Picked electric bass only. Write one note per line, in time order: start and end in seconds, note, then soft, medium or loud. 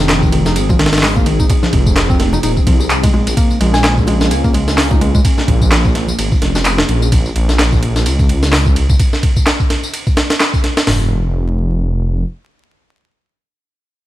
0.00 0.31 D#3 loud
0.33 0.44 D#3 loud
0.46 0.51 D#4 medium
0.70 0.78 F3 loud
0.79 1.02 D#3 loud
1.03 1.15 G#3 medium
1.16 1.25 A#3 medium
1.26 1.38 D#3 loud
1.40 1.45 D#4 medium
1.63 1.68 F3 medium
2.10 2.32 C4 medium
2.33 2.39 D#4 medium
2.43 2.50 D#4 medium
2.67 2.74 F3 medium
3.03 3.09 G#3 loud
3.13 3.26 G#3 loud
3.37 3.59 A#3 medium
3.61 4.06 G#3 loud
4.07 4.19 G#3 loud
4.21 4.26 G#3 medium
4.44 4.53 A#3 loud
4.54 4.77 G#3 loud
4.78 4.90 C#4 medium
4.91 5.00 D#4 medium
5.01 5.13 G#3 loud
5.15 5.20 G#3 medium